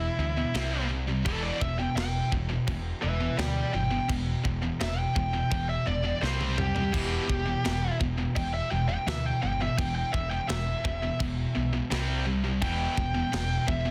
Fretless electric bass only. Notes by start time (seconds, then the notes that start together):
0.18 D2
0.54 C2
1.26 E1
1.61 E1
1.96 E1
2.32 E1
2.68 E1
3.03 E1
3.38 D2
3.74 G1
4.09 E1
4.45 E1
4.81 E1
5.16 E1
5.51 E1
5.87 E1
6.22 C2
6.94 E1
7.29 E1
7.65 E1
8.01 E1
8.37 E1
8.72 E1
9.07 D2
9.43 G1
9.78 E1
10.14 E1
10.50 E1
10.85 E1
11.20 E1
11.56 B1
11.91 C2
12.62 E1
12.97 E1
13.33 E1
13.68 E1